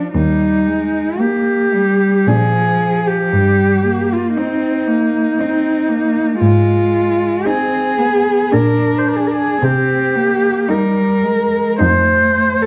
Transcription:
Already playing: F3 D4
0.14 D#2 G3 D#4
0.67 G#3
1.19 A#3 G4
1.73 G3
2.27 A#2 F3 D4 G#4
3.07 G4
3.32 G2 G3
3.85 A#3
4.13 F4
4.36 C4 D#4
4.87 A#3
5.38 C4 D#4
5.89 A#3
6.39 G#2 G#3 F4
7.45 C4 D#4 G#4
7.98 B3
8.51 A#2 D4 A#4
8.98 C5
9.08 A#4
9.16 G#4
9.27 A#4
9.35 G#4
9.62 C3 C4 G4
10.15 A#3
10.68 G3 D#4 A#4
11.22 G#3
11.79 F2 A3 D#4 C5
12.62 A4

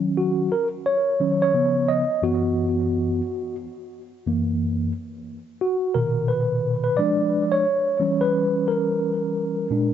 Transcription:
Already playing: D#3 F#3 C#4
0.17 F#4
0.52 A#4
0.86 C#5
1.20 D#3 F#3 C#4
1.42 C#5
1.54 C#3 F3 B3
1.88 D#5
2.22 F#2 E3 B3 F#4
4.27 F#2 E3 A#3
5.61 F#4
5.94 A#2 B2 D#3 A#4
6.28 B4
6.84 B4
6.97 F3 G#3 D4 D5
7.52 C#5
8.00 E3 G3 C#4
8.21 B4
8.68 A#4
9.71 A#2 G#3 D4

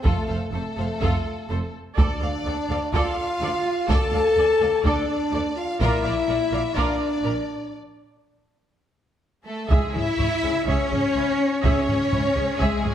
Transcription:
0.04 F1 F2 A3 F4 A4, taiko
0.28 F1 F2 A4 C5 F5
0.52 F1 F2 A3 A4 C5
0.77 F1 F2 A4 C5 F5
1.01 F1 F2 F4 A4, taiko
1.49 F1 F2 A4 C5
1.97 D2 D4 A4 D5, taiko
2.21 D2 A4 D5 F5
2.45 D2 A4 D5
2.69 D2 A4 D5 F5
2.92 D2 F4 A4 D5 F5, taiko
3.41 D2 A4 D5
3.89 D2 A4 D5 A5, taiko
4.12 D2 A4 D5 F5
4.36 D2 A4 D5
4.61 D2 A4 D5 F5
4.84 D2 D4 A4 D5, taiko
5.32 D2 A4 D5
5.56 F4 F5
5.79 A#1 A#2 E4 F4 A#4 D5 E5, taiko
6.03 A#1 A#2 A#4 D5 F5
6.27 A#1 A#2 A#4 D5
6.52 A#1 A#2 A#4 D5 F5
6.75 A#1 A#2 D4 F4 A#4 D5, taiko
7.24 A#1 A#2 A#4 D5
9.45 A3 A4
9.69 C#2 G#3 G#4 E5, taiko
9.93 C#2 C#4 E4 G#4 E5, taiko low-mid
10.19 C#2 E4 C#5, taiko low-mid
10.43 C#2 C#4 G#4
10.66 C#2 C#4 G#4 C#5 E5, taiko
10.91 C#2 C#4 G#4, taiko low-mid
11.15 C#2 E4 C#5
11.63 C#2 C#4 G#4 C#5 E5, taiko
11.88 C#2 C#4 G#4, taiko low-mid
12.11 C#2 E4 C#5, taiko low-mid
12.35 C#2 C#4 G#4
12.59 C#2 G#3 G#4 E5, taiko
12.83 C#2 C#4 G#4, taiko low-mid

